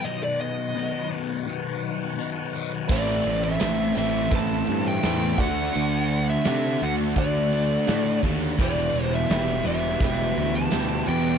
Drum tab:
CC |----------------|x---------------|----------------|x---------------|
HH |----------------|--x-xxx-x-x-xxxx|xxxxxxx-xxx-xxxx|--x-xxx-x-x-xxxx|
SD |----------------|----o--o----o---|----o--o----o---|----o--o----o---|
BD |----------------|o-------o-----o-|--------o-----o-|o-------o-------|